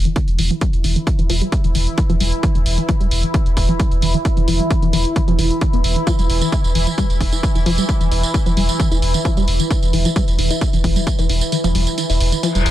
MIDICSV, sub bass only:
0, 0, Header, 1, 2, 480
1, 0, Start_track
1, 0, Tempo, 454545
1, 648, Time_signature, 4, 2, 24, 8
1, 13419, End_track
2, 0, Start_track
2, 0, Title_t, "Sub bass"
2, 0, Program_c, 0, 38
2, 294, Note_on_c, 0, 28, 74
2, 401, Note_off_c, 0, 28, 0
2, 408, Note_on_c, 0, 28, 104
2, 531, Note_off_c, 0, 28, 0
2, 774, Note_on_c, 0, 28, 77
2, 882, Note_off_c, 0, 28, 0
2, 888, Note_on_c, 0, 28, 101
2, 1011, Note_off_c, 0, 28, 0
2, 1253, Note_on_c, 0, 28, 75
2, 1361, Note_off_c, 0, 28, 0
2, 1367, Note_on_c, 0, 28, 100
2, 1491, Note_off_c, 0, 28, 0
2, 1733, Note_on_c, 0, 28, 77
2, 1841, Note_off_c, 0, 28, 0
2, 1847, Note_on_c, 0, 28, 100
2, 1971, Note_off_c, 0, 28, 0
2, 2213, Note_on_c, 0, 28, 75
2, 2321, Note_off_c, 0, 28, 0
2, 2327, Note_on_c, 0, 28, 101
2, 2451, Note_off_c, 0, 28, 0
2, 2693, Note_on_c, 0, 28, 73
2, 2801, Note_off_c, 0, 28, 0
2, 2807, Note_on_c, 0, 28, 98
2, 2931, Note_off_c, 0, 28, 0
2, 3173, Note_on_c, 0, 28, 77
2, 3281, Note_off_c, 0, 28, 0
2, 3287, Note_on_c, 0, 28, 95
2, 3411, Note_off_c, 0, 28, 0
2, 3653, Note_on_c, 0, 28, 77
2, 3762, Note_off_c, 0, 28, 0
2, 3768, Note_on_c, 0, 28, 104
2, 3891, Note_off_c, 0, 28, 0
2, 4133, Note_on_c, 0, 28, 77
2, 4241, Note_off_c, 0, 28, 0
2, 4247, Note_on_c, 0, 28, 100
2, 4371, Note_off_c, 0, 28, 0
2, 4613, Note_on_c, 0, 28, 77
2, 4721, Note_off_c, 0, 28, 0
2, 4727, Note_on_c, 0, 28, 99
2, 4851, Note_off_c, 0, 28, 0
2, 5093, Note_on_c, 0, 28, 81
2, 5201, Note_off_c, 0, 28, 0
2, 5207, Note_on_c, 0, 28, 97
2, 5331, Note_off_c, 0, 28, 0
2, 5573, Note_on_c, 0, 28, 80
2, 5682, Note_off_c, 0, 28, 0
2, 5688, Note_on_c, 0, 28, 100
2, 5811, Note_off_c, 0, 28, 0
2, 6054, Note_on_c, 0, 28, 75
2, 6162, Note_off_c, 0, 28, 0
2, 6168, Note_on_c, 0, 28, 100
2, 6291, Note_off_c, 0, 28, 0
2, 6534, Note_on_c, 0, 28, 77
2, 6642, Note_off_c, 0, 28, 0
2, 6648, Note_on_c, 0, 28, 97
2, 6772, Note_off_c, 0, 28, 0
2, 7015, Note_on_c, 0, 28, 80
2, 7123, Note_off_c, 0, 28, 0
2, 7129, Note_on_c, 0, 28, 103
2, 7252, Note_off_c, 0, 28, 0
2, 7495, Note_on_c, 0, 28, 77
2, 7602, Note_off_c, 0, 28, 0
2, 7609, Note_on_c, 0, 28, 100
2, 7732, Note_off_c, 0, 28, 0
2, 7974, Note_on_c, 0, 28, 76
2, 8083, Note_off_c, 0, 28, 0
2, 8089, Note_on_c, 0, 28, 104
2, 8212, Note_off_c, 0, 28, 0
2, 8454, Note_on_c, 0, 28, 78
2, 8563, Note_off_c, 0, 28, 0
2, 8569, Note_on_c, 0, 28, 99
2, 8692, Note_off_c, 0, 28, 0
2, 8935, Note_on_c, 0, 28, 79
2, 9043, Note_off_c, 0, 28, 0
2, 9049, Note_on_c, 0, 28, 104
2, 9172, Note_off_c, 0, 28, 0
2, 9415, Note_on_c, 0, 28, 81
2, 9522, Note_off_c, 0, 28, 0
2, 9528, Note_on_c, 0, 28, 103
2, 9652, Note_off_c, 0, 28, 0
2, 9894, Note_on_c, 0, 28, 78
2, 10003, Note_off_c, 0, 28, 0
2, 10009, Note_on_c, 0, 28, 106
2, 10132, Note_off_c, 0, 28, 0
2, 10374, Note_on_c, 0, 28, 78
2, 10482, Note_off_c, 0, 28, 0
2, 10488, Note_on_c, 0, 28, 98
2, 10611, Note_off_c, 0, 28, 0
2, 10853, Note_on_c, 0, 28, 75
2, 10962, Note_off_c, 0, 28, 0
2, 10968, Note_on_c, 0, 28, 102
2, 11091, Note_off_c, 0, 28, 0
2, 11333, Note_on_c, 0, 28, 81
2, 11442, Note_off_c, 0, 28, 0
2, 11448, Note_on_c, 0, 28, 99
2, 11571, Note_off_c, 0, 28, 0
2, 11813, Note_on_c, 0, 28, 78
2, 11921, Note_off_c, 0, 28, 0
2, 11928, Note_on_c, 0, 28, 103
2, 12051, Note_off_c, 0, 28, 0
2, 12293, Note_on_c, 0, 28, 73
2, 12402, Note_off_c, 0, 28, 0
2, 12408, Note_on_c, 0, 28, 99
2, 12531, Note_off_c, 0, 28, 0
2, 12773, Note_on_c, 0, 28, 78
2, 12881, Note_off_c, 0, 28, 0
2, 12888, Note_on_c, 0, 28, 101
2, 13011, Note_off_c, 0, 28, 0
2, 13253, Note_on_c, 0, 28, 82
2, 13362, Note_off_c, 0, 28, 0
2, 13368, Note_on_c, 0, 28, 102
2, 13419, Note_off_c, 0, 28, 0
2, 13419, End_track
0, 0, End_of_file